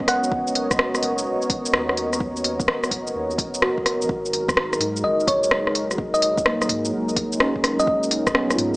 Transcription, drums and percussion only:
0.00 kick
0.08 cross-stick, open hi-hat
0.24 shaker
0.32 kick
0.47 shaker
0.55 open hi-hat
0.71 kick, cross-stick, shaker
0.79 cross-stick
0.95 cross-stick, shaker
1.03 open hi-hat
1.18 shaker
1.42 shaker
1.50 kick, open hi-hat
1.66 shaker
1.74 cross-stick
1.89 cross-stick
1.97 open hi-hat
2.13 cross-stick, shaker
2.20 kick
2.36 shaker
2.44 open hi-hat
2.60 kick, shaker
2.68 cross-stick
2.84 cross-stick, shaker
2.91 kick, open hi-hat
3.07 shaker
3.31 shaker
3.38 kick, open hi-hat
3.54 shaker
3.62 cross-stick
3.78 kick
3.86 cross-stick, open hi-hat
4.02 shaker
4.09 kick
4.26 shaker
4.33 open hi-hat
4.48 kick, cross-stick, shaker
4.57 cross-stick
4.73 cross-stick, shaker
4.81 open hi-hat
4.96 shaker
5.20 shaker
5.27 kick, open hi-hat
5.44 shaker
5.51 cross-stick
5.67 cross-stick
5.75 open hi-hat
5.91 cross-stick, shaker
5.98 kick
6.14 shaker
6.22 open hi-hat
6.37 kick, shaker
6.46 cross-stick
6.62 cross-stick, shaker
6.69 kick, open hi-hat
6.85 shaker
7.09 shaker
7.16 kick, open hi-hat
7.32 shaker
7.40 cross-stick
7.56 kick
7.64 cross-stick, open hi-hat
7.80 shaker
7.87 kick
8.03 shaker
8.11 open hi-hat
8.27 kick, cross-stick, shaker
8.35 cross-stick
8.50 cross-stick, shaker
8.58 open hi-hat

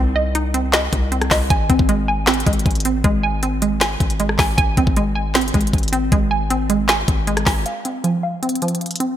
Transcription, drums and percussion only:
0.35 closed hi-hat
0.54 closed hi-hat
0.73 snare, clap, closed hi-hat
0.93 kick, closed hi-hat
1.12 closed hi-hat
1.22 cross-stick, closed hi-hat
1.31 kick, snare, clap, open hi-hat
1.50 kick, closed hi-hat
1.70 kick, closed hi-hat
1.79 kick
1.89 closed hi-hat
2.27 snare, clap, closed hi-hat
2.34 closed hi-hat
2.40 closed hi-hat
2.47 kick, closed hi-hat
2.53 closed hi-hat
2.59 closed hi-hat
2.66 kick, closed hi-hat
2.71 closed hi-hat
2.75 closed hi-hat
2.80 closed hi-hat
2.85 closed hi-hat
3.04 kick, closed hi-hat
3.43 closed hi-hat
3.62 closed hi-hat
3.81 snare, clap, closed hi-hat
4.00 kick, closed hi-hat
4.10 closed hi-hat
4.20 closed hi-hat
4.29 cross-stick
4.38 kick, snare, clap, open hi-hat
4.58 kick, closed hi-hat
4.77 kick, closed hi-hat
4.87 kick
4.97 closed hi-hat
5.35 snare, clap, closed hi-hat
5.41 closed hi-hat
5.48 closed hi-hat
5.54 kick, closed hi-hat
5.61 closed hi-hat
5.67 closed hi-hat
5.73 kick, closed hi-hat
5.78 closed hi-hat
5.83 closed hi-hat
5.88 closed hi-hat
5.93 closed hi-hat
6.12 kick, closed hi-hat
6.50 closed hi-hat
6.70 closed hi-hat
6.89 snare, clap, closed hi-hat
7.08 kick, closed hi-hat
7.27 closed hi-hat
7.37 cross-stick, closed hi-hat
7.46 kick, snare, clap, open hi-hat
7.66 closed hi-hat
7.85 closed hi-hat
8.04 closed hi-hat
8.43 closed hi-hat
8.49 closed hi-hat
8.55 closed hi-hat
8.62 closed hi-hat
8.68 closed hi-hat
8.75 closed hi-hat
8.81 closed hi-hat
8.86 closed hi-hat
8.91 closed hi-hat
8.96 closed hi-hat
9.00 closed hi-hat

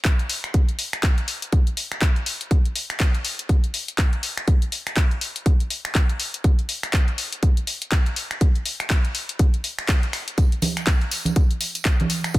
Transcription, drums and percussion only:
0.05 kick, clap, closed hi-hat
0.19 closed hi-hat
0.30 open hi-hat
0.44 finger snap
0.54 kick, closed hi-hat
0.69 closed hi-hat
0.79 open hi-hat
0.93 finger snap, closed hi-hat
1.03 kick, clap, closed hi-hat
1.18 closed hi-hat
1.28 open hi-hat
1.42 closed hi-hat
1.52 kick, closed hi-hat
1.67 closed hi-hat
1.77 open hi-hat
1.92 finger snap, closed hi-hat
2.02 kick, clap, closed hi-hat
2.16 closed hi-hat
2.26 open hi-hat
2.41 closed hi-hat
2.51 kick, closed hi-hat
2.65 closed hi-hat
2.76 open hi-hat
2.90 finger snap, closed hi-hat
3.00 kick, clap, closed hi-hat
3.15 closed hi-hat
3.25 open hi-hat
3.39 closed hi-hat
3.49 kick, closed hi-hat
3.64 closed hi-hat
3.74 open hi-hat
3.88 closed hi-hat
3.98 kick, clap, closed hi-hat
4.13 closed hi-hat
4.23 open hi-hat
4.37 finger snap, closed hi-hat
4.48 kick, closed hi-hat
4.62 closed hi-hat
4.72 open hi-hat
4.87 finger snap, closed hi-hat
4.97 kick, clap, closed hi-hat
5.11 closed hi-hat
5.21 open hi-hat
5.36 closed hi-hat
5.46 kick, closed hi-hat
5.60 closed hi-hat
5.70 open hi-hat
5.85 finger snap, closed hi-hat
5.95 kick, clap, closed hi-hat
6.09 closed hi-hat
6.20 open hi-hat
6.34 closed hi-hat
6.44 kick, closed hi-hat
6.59 closed hi-hat
6.69 open hi-hat
6.83 finger snap, closed hi-hat
6.93 kick, clap, closed hi-hat
7.08 closed hi-hat
7.18 open hi-hat
7.32 closed hi-hat
7.43 kick, closed hi-hat
7.57 closed hi-hat
7.67 open hi-hat
7.82 closed hi-hat
7.92 kick, clap, closed hi-hat
8.06 closed hi-hat
8.16 open hi-hat
8.31 finger snap, closed hi-hat
8.41 kick, closed hi-hat
8.55 closed hi-hat
8.66 open hi-hat
8.80 finger snap, closed hi-hat
8.90 kick, clap, closed hi-hat
9.05 closed hi-hat
9.15 open hi-hat
9.29 closed hi-hat
9.39 kick, closed hi-hat
9.54 closed hi-hat
9.64 open hi-hat
9.79 finger snap, closed hi-hat
9.89 kick, clap, closed hi-hat
10.03 closed hi-hat
10.13 finger snap, open hi-hat
10.28 closed hi-hat
10.38 kick, closed hi-hat, tambourine
10.52 closed hi-hat
10.62 open hi-hat, tambourine, high conga
10.77 finger snap, closed hi-hat, tambourine
10.87 kick, clap, closed hi-hat
11.01 closed hi-hat
11.11 open hi-hat, tambourine
11.25 closed hi-hat, tambourine, high conga
11.36 kick, closed hi-hat, tambourine
11.51 closed hi-hat
11.61 open hi-hat, tambourine
11.75 closed hi-hat, tambourine
11.85 kick, clap, closed hi-hat, tambourine
12.00 closed hi-hat, high conga
12.10 open hi-hat, tambourine
12.24 finger snap, closed hi-hat, tambourine
12.34 kick, closed hi-hat, tambourine

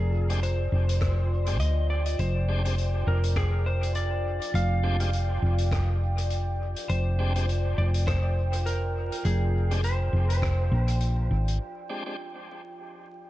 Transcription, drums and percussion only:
0.30 closed hi-hat
0.43 closed hi-hat
0.89 closed hi-hat
1.01 kick, cross-stick, closed hi-hat
1.47 closed hi-hat
1.60 closed hi-hat
2.06 closed hi-hat
2.19 closed hi-hat
2.65 closed hi-hat
2.78 closed hi-hat
3.24 closed hi-hat
3.36 kick, cross-stick, closed hi-hat
3.83 closed hi-hat
3.95 closed hi-hat
4.42 closed hi-hat
4.55 closed hi-hat
5.00 closed hi-hat
5.13 closed hi-hat
5.58 closed hi-hat
5.71 kick, cross-stick, closed hi-hat
6.18 closed hi-hat
6.30 closed hi-hat
6.76 closed hi-hat
6.89 closed hi-hat
7.36 closed hi-hat
7.49 closed hi-hat
7.94 closed hi-hat
8.07 kick, cross-stick, closed hi-hat
8.53 closed hi-hat
8.66 closed hi-hat
9.12 closed hi-hat
9.25 closed hi-hat
9.71 closed hi-hat
9.84 closed hi-hat
10.30 closed hi-hat
10.42 kick, cross-stick, closed hi-hat
10.88 closed hi-hat
11.00 closed hi-hat
11.48 closed hi-hat

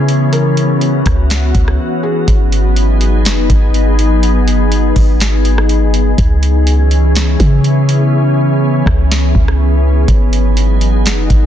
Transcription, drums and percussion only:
0.09 closed hi-hat
0.33 closed hi-hat
0.57 closed hi-hat
0.81 closed hi-hat
1.06 kick, cross-stick, closed hi-hat
1.30 snare, closed hi-hat
1.55 kick, closed hi-hat
1.68 cross-stick
2.28 kick, closed hi-hat
2.52 closed hi-hat
2.76 closed hi-hat
3.01 closed hi-hat
3.25 snare, closed hi-hat
3.50 kick, closed hi-hat
3.74 closed hi-hat
3.99 closed hi-hat
4.23 closed hi-hat
4.48 closed hi-hat
4.72 closed hi-hat
4.96 kick, open hi-hat
5.20 snare, closed hi-hat
5.45 closed hi-hat
5.58 cross-stick
5.69 closed hi-hat
5.94 closed hi-hat
6.18 kick, closed hi-hat
6.43 closed hi-hat
6.67 closed hi-hat
6.91 closed hi-hat
7.15 snare, closed hi-hat
7.40 kick, closed hi-hat
7.64 closed hi-hat
7.89 closed hi-hat
8.86 kick, cross-stick
9.12 snare
9.35 kick
9.48 cross-stick
10.08 kick, closed hi-hat
10.33 closed hi-hat
10.57 closed hi-hat
10.81 closed hi-hat
11.06 snare, closed hi-hat
11.30 kick, closed hi-hat

